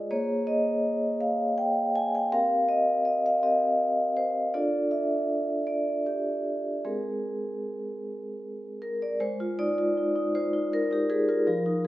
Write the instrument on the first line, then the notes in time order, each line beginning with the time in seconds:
vibraphone
Already playing: G#3 F4 G#4 C5 D#5
0.11 A#3 G#4 C5 C#5
0.47 D#5
1.21 F5
1.58 G5
1.96 G#5
2.15 G5
2.32 C4 G4 A#4 F5
2.69 D#5
3.05 D#5
3.26 F5
3.43 C4 G4 A#4 D#5
4.17 C5
4.54 D4 F4 A4 D5
4.91 E5
5.67 D5
6.06 G4
6.85 G#3 C4 G#4 A#4
8.82 A#4
9.02 D5
9.20 G#3 C5
9.40 F4
9.59 D#4 D5
9.78 F4
9.97 D#4
10.16 D#4
10.35 F4 C5
10.53 D#4
10.73 A#4
10.91 D#4 G4
11.10 G#4 A#4
11.29 F4 A#4
11.47 F3
11.66 D#4